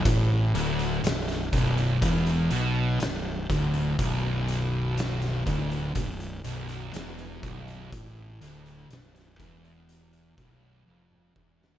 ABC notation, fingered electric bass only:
X:1
M:4/4
L:1/8
Q:1/4=61
K:Bm
V:1 name="Fingered electric bass" clef=bass
A,,, D,,, B,,,, B,,,, E,,, B,,, B,,,, D,,, | B,,,,3 D,,, B,,,, B,,,, E,,, B,,,, | A,,, D,,, B,,,, E,,,2 B,,,, ^E,,, =E,,, |]